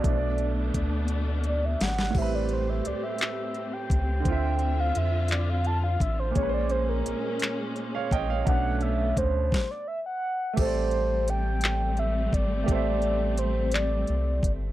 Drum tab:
CC |------------|x-----------|------------|------------|
HH |x-x-x-x-x-x-|--x-x-x-x-x-|x-x-x-x-x-x-|x-x-x-x-x-x-|
CP |------------|------x-----|------x-----|------x-----|
SD |----------oo|------------|------------|------------|
BD |o---o-------|o---------o-|o---------o-|o---------o-|

CC |------------|x-----------|------------|
HH |x-x-x-------|x-x-x-x-x-x-|x-x-x-x-x-x-|
CP |------------|------x-----|------x-----|
SD |------o-----|------------|------------|
BD |o---o-o-----|o---------o-|o---------o-|